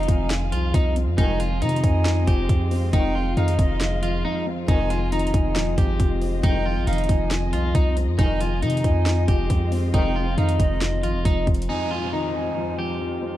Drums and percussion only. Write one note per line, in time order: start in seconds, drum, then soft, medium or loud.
0.03 closed hi-hat soft
0.08 kick loud
0.08 closed hi-hat medium
0.30 snare loud
0.30 clap loud
0.30 closed hi-hat medium
0.52 closed hi-hat medium
0.74 kick loud
0.74 closed hi-hat medium
0.96 closed hi-hat medium
1.18 kick loud
1.18 closed hi-hat medium
1.40 closed hi-hat medium
1.62 closed hi-hat medium
1.69 closed hi-hat medium
1.76 closed hi-hat medium
1.84 kick medium
1.84 closed hi-hat medium
2.05 snare loud
2.05 clap loud
2.05 closed hi-hat medium
2.27 kick loud
2.27 closed hi-hat medium
2.49 kick loud
2.49 closed hi-hat medium
2.71 open hi-hat medium
2.93 kick loud
2.93 closed hi-hat medium
3.37 closed hi-hat soft
3.48 closed hi-hat medium
3.59 kick loud
3.59 closed hi-hat medium
3.81 snare loud
3.81 clap loud
3.81 closed hi-hat medium
4.03 closed hi-hat medium
4.68 kick loud
4.68 closed hi-hat medium
4.90 closed hi-hat medium
5.12 closed hi-hat medium
5.19 closed hi-hat medium
5.27 closed hi-hat medium
5.34 kick loud
5.34 closed hi-hat medium
5.56 snare loud
5.56 clap loud
5.56 closed hi-hat medium
5.78 kick loud
5.78 closed hi-hat medium
6.00 kick loud
6.00 closed hi-hat medium
6.22 open hi-hat medium
6.43 kick loud
6.43 closed hi-hat medium
6.87 closed hi-hat medium
6.93 closed hi-hat medium
6.98 closed hi-hat medium
7.04 closed hi-hat soft
7.09 kick loud
7.09 closed hi-hat medium
7.31 snare loud
7.31 clap loud
7.31 closed hi-hat medium
7.53 closed hi-hat medium
7.75 kick loud
7.75 closed hi-hat medium
7.97 closed hi-hat medium
8.19 kick loud
8.19 closed hi-hat medium
8.41 closed hi-hat medium
8.62 closed hi-hat medium
8.70 closed hi-hat medium
8.77 closed hi-hat medium
8.84 kick loud
8.84 closed hi-hat medium
9.06 snare loud
9.06 clap loud
9.06 closed hi-hat medium
9.28 kick loud
9.28 closed hi-hat medium
9.50 kick loud
9.50 closed hi-hat medium
9.72 open hi-hat medium
9.94 kick loud
9.94 closed hi-hat medium
10.38 closed hi-hat soft
10.49 closed hi-hat medium
10.60 kick loud
10.60 closed hi-hat medium
10.81 snare loud
10.81 clap loud
10.81 closed hi-hat medium
11.03 closed hi-hat medium
11.25 kick loud
11.25 closed hi-hat medium
11.47 kick medium
11.47 closed hi-hat soft
11.54 closed hi-hat medium
11.62 closed hi-hat medium